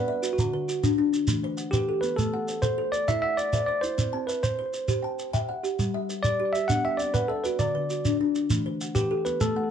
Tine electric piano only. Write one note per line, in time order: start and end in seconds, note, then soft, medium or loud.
0.00 0.38 B4 loud
0.33 0.92 F#4 medium
1.71 2.03 G4 loud
2.01 2.16 B4 medium
2.16 2.64 A4 medium
2.62 2.94 C5 loud
2.92 3.08 D5 loud
3.08 3.21 E5 loud
3.22 3.38 E5 loud
3.37 3.65 D5 loud
3.66 3.83 D5 medium
3.81 4.29 C5 loud
4.27 4.42 B4 medium
4.43 5.30 C5 medium
6.23 6.54 D5 loud
6.53 6.69 E5 loud
6.68 6.84 F#5 loud
6.85 7.00 E5 loud
6.97 7.14 D5 loud
7.14 7.30 B4 loud
7.28 7.45 A4 medium
7.44 7.58 B4 medium
7.59 8.16 D5 medium
8.95 9.26 G4 loud
9.25 9.41 B4 medium
9.41 9.71 A4 loud